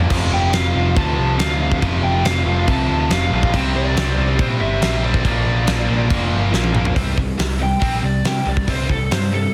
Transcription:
Already playing: F3 A#3
0.10 F1 F2 C3 F3, kick, crash
0.33 F1 G5
0.53 F1 F2 C3 F3 F5, snare, crash
0.75 F1 F2 C3 F3
0.96 D2 F2 C3 F3 A5, kick, crash
1.18 C2
1.39 D2 F2 C3 F3 F5, snare, crash
1.61 F2 C3 F3
1.72 kick
1.82 F1 F2 C3 F3, kick, crash
2.03 F1 G5
2.25 F1 F2 C3 F3 F5, snare, crash
2.46 F1 F2 C3 F3
2.67 C2 F2 C3 F3 A5, kick, crash
2.89 D2
3.10 F1 F2 C3 F3 F5, snare, crash
3.31 A#1 F2 C3 F3
3.43 kick
3.53 C2 C3 G3 C4, kick, crash
3.75 C2 D5
3.95 C2 C3 G3 C4, snare, crash
4.17 C2 C3 G3 C4
4.38 A#2 C3 G3 C4 C5, kick, crash
4.61 G1 E5
4.81 A#1 C3 G3 C4, snare, crash
5.03 C3 G3 C4 D5
5.14 kick
5.23 A#1 A#2 F3 A#3, kick, crash
5.46 A#1
5.67 A#1 A#2 F3 A#3, snare, crash
5.87 A#1 A#2 F3 A#3
6.09 F1 A#2 F3 A#3, kick, crash
6.32 G1
6.52 A#1 A#2 F3 A#3, snare
6.64 high tom
6.73 A#1 A#2 F3 A#3, mid tom
6.85 floor tom
6.94 C2 C3 G3 C4, kick, open hi-hat
7.17 C3 G3, kick
7.38 C2 C3 G3, snare, open hi-hat
7.59 C3 G3
7.63 G5
7.80 A#1 C3 G3 C4, kick, open hi-hat
8.02 C2 C3 G3 D5
8.25 C3 G3 G5, snare, open hi-hat
8.45 C2 C3 G3 D5
8.57 kick
8.68 C2 C3 G3 C4 C5, kick, open hi-hat
8.89 C2 C3 G3 A4, kick
9.11 G2 C3 G3 C5, snare, open hi-hat
9.32 C3 G3 A4

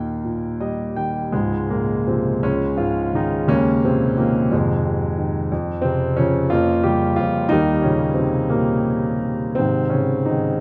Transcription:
Already playing: D#2 A#2 D#3 A#4 G5
0.25 A#2
0.60 G3 D#5
0.96 D#3 G5
1.32 C#2 G#2 C#3 F3 G#3
1.70 G#2 A#2 A#3
2.07 C3 F3 C4
2.43 C#2 C#3 F3 G#3 C#4
2.77 G#2 F3 F4
3.13 C#3 D#3 D#4
3.47 D#2 C#3 G#3 A#3 C#4
3.84 A#2 C3 C4
4.17 A#2 D#3 A#3
4.51 F2 G#2 C3 D#3 G#3
4.85 C3
5.18 D#3
5.52 F2
5.82 C3 C#3 C4
6.17 C#3 F3 C#4
6.50 F2 F3 A#3 C#4 F4
6.83 C#3 G3 G4
7.16 F2 F3 F4
7.49 D#2 D#3 G3 A#3 D#4
7.82 A#2 C#3 C#4
8.14 C4
8.18 C3 D#3
8.50 A#2 G3 A#3
9.55 G#2 C3 D#3 C4
9.90 C#4
9.94 C#3 D#3
10.25 D#4
10.30 G#2 D#3

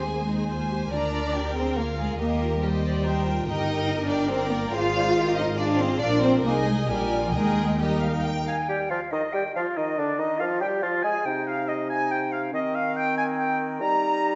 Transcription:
Already playing: D#2 C5 G#5
0.06 G#3 G#4
0.13 A#3
0.20 G#3
0.27 D#4
0.49 F4 C5 G#5
0.71 G4
0.91 D2 D4 F4 A#4 D5 A#5
1.13 F4
1.34 G4 A#4 G5
1.56 C4 G#4 C5
1.77 A#3 F4 A#4 F5
1.98 G#3 G#4
2.18 D#2 A#3 D#4 G4 A#4 D#5
2.41 F4
2.62 G3 G4 A#4 C5 D#5
2.83 D5
3.04 D#4 A#4 C5 G5
3.25 F4
3.46 G1 D#4 G4 A#4 D#5 G5
3.67 G4
3.89 D#5
4.08 D4 D5 G5
4.30 C4 A#4 C5 D5 G5
4.51 A#3 A#4
4.73 G#1 F4 G#4 C5 F5
4.96 D5
5.16 G4 A#4 C5 D#5
5.37 D#4 F4 D#5
5.58 D4 F4 G#4 C5 D5 F5
5.80 C4 C5
6.00 A#1 D4 F4 A#4 D5 F5
6.22 C4 C5 G5
6.44 C2 A#3 D#4 G#4 A#4 D#5 G#5
6.66 G#3 G#4
6.88 A#1 G3 F4 G4 A#4 D5 G#5
7.23 F3 F4
7.33 D#2 G#3 D#4 G#4 A#4 D#5 G5
7.80 G3 D#4 G4 A#4 D#5
8.01 F5
8.24 G5
8.47 F5 G#5
8.68 G3 G4 G5
8.90 F3 F4 F5
9.11 D#3 D#4 D#5
9.33 G3 G4 G5
9.55 F3 F4 F5
9.76 D#3 D#4 D#5
9.97 D3 D4 D5
10.19 D#3 D#4 D#5
10.39 F3 F4 F5
10.60 G3 G4 G5
10.82 F3 F4 F5
11.03 G#3 G#4 G#5
11.25 C3 D#4 G5
11.47 F5
11.68 D#5
11.89 G#5
12.11 G5
12.32 F5
12.53 D#3 C4 D#5
12.75 F5
12.96 G5
13.17 G#5
13.38 G5
13.80 G3 D#4 A#5

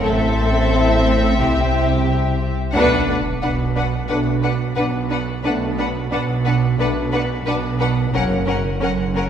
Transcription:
0.04 A1 A2 C4 E4 A4 E5
1.41 C2 C3 G4
2.73 B1 B2 A3 D4 B4 F#5, sub drop
3.08 D4 B4 F#5
3.42 B1 B2 D4 B4 F#5
3.75 D4 B4 F#5
4.09 B1 B2 A3 D4 B4 F#5
4.43 D4 B4 F#5
4.75 B1 B2 D4 B4 F#5
5.10 D4 B4 F#5
5.43 B1 B2 A3 D4 B4 F#5
5.78 D4 B4 F#5
6.12 B1 B2 D4 B4 F#5
6.44 D4 B4 F#5
6.78 B1 B2 A3 D4 B4 F#5
7.12 D4 B4 F#5
7.45 B1 B2 D4 B4 F#5
7.79 D4 B4 F#5
8.13 F#1 F#2 A#3 C#4 A#4 F#5
8.46 C#4 A#4 F#5
8.80 F#1 F#2 C#4 A#4 F#5
9.15 C#4 A#4 F#5

